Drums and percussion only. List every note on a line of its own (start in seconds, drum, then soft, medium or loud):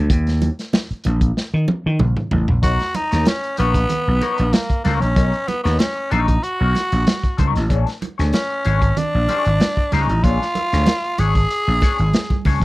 0.10 kick loud
0.10 closed hi-hat medium
0.27 snare soft
0.27 closed hi-hat soft
0.42 closed hi-hat medium
0.42 muted conga medium
0.59 snare soft
0.59 closed hi-hat medium
0.73 snare medium
0.73 high conga medium
0.90 closed hi-hat soft
1.04 closed hi-hat loud
1.04 muted conga soft
1.21 kick medium
1.21 closed hi-hat medium
1.37 snare medium
1.68 high tom medium
1.68 muted conga medium
1.99 mid tom medium
1.99 high conga medium
2.17 mid tom medium
2.31 floor tom loud
2.31 high conga medium
2.48 floor tom loud
2.63 kick loud
2.63 closed hi-hat medium
2.80 snare soft
2.80 closed hi-hat soft
2.94 closed hi-hat medium
2.94 muted conga medium
3.12 snare soft
3.12 closed hi-hat medium
3.25 snare loud
3.25 closed hi-hat medium
3.25 high conga medium
3.43 closed hi-hat soft
3.57 closed hi-hat medium
3.57 muted conga soft
3.74 kick medium
3.74 closed hi-hat soft
3.89 closed hi-hat medium
3.89 muted conga soft
3.89 low conga medium
4.21 closed hi-hat medium
4.21 muted conga soft
4.38 closed hi-hat soft
4.53 snare loud
4.53 closed hi-hat medium
4.53 high conga medium
4.70 kick medium
4.70 closed hi-hat soft
4.85 snare soft
4.85 closed hi-hat medium
4.85 high conga medium
5.02 closed hi-hat soft
5.16 kick loud
5.16 closed hi-hat medium
5.33 closed hi-hat soft
5.48 closed hi-hat medium
5.48 muted conga medium
5.65 snare soft
5.65 closed hi-hat soft
5.79 snare medium
5.79 closed hi-hat medium
5.79 high conga medium
6.11 closed hi-hat medium
6.11 muted conga soft
6.28 kick medium
6.28 closed hi-hat soft
6.43 closed hi-hat medium
6.75 snare soft
6.75 closed hi-hat medium
6.75 muted conga medium
6.92 closed hi-hat medium
7.07 snare loud
7.07 closed hi-hat medium
7.07 high conga medium
7.23 kick medium
7.23 closed hi-hat soft
7.38 kick loud
7.38 closed hi-hat medium
7.38 high conga medium
7.56 snare soft
7.56 closed hi-hat soft
7.70 kick loud
7.70 closed hi-hat medium
7.87 snare soft
7.87 closed hi-hat soft
8.02 closed hi-hat medium
8.02 muted conga medium
8.19 snare soft
8.19 closed hi-hat soft
8.33 snare medium
8.33 closed hi-hat medium
8.33 high conga medium
8.65 closed hi-hat medium
8.65 muted conga soft
8.82 kick medium
8.82 closed hi-hat soft
8.97 closed hi-hat medium
8.97 muted conga soft
8.97 low conga medium
9.29 closed hi-hat medium
9.29 muted conga medium
9.45 closed hi-hat soft
9.60 snare loud
9.60 closed hi-hat medium
9.60 high conga medium
9.77 kick medium
9.92 snare soft
9.92 closed hi-hat medium
9.92 high conga medium
10.09 closed hi-hat soft
10.24 kick loud
10.24 closed hi-hat medium
10.42 snare soft
10.55 closed hi-hat medium
10.55 muted conga medium
10.73 snare soft
10.73 closed hi-hat soft
10.86 snare loud
10.86 closed hi-hat medium
10.86 high conga medium
11.04 closed hi-hat soft
11.18 closed hi-hat medium
11.18 muted conga medium
11.35 kick medium
11.35 closed hi-hat soft
11.51 closed hi-hat medium
11.81 kick loud
11.81 snare soft
11.81 closed hi-hat medium
11.81 muted conga soft
11.98 closed hi-hat soft
12.13 snare loud
12.13 closed hi-hat medium
12.13 high conga medium
12.30 kick medium
12.30 high conga medium
12.45 kick medium
12.45 open hi-hat medium
12.45 high conga medium
12.62 kick medium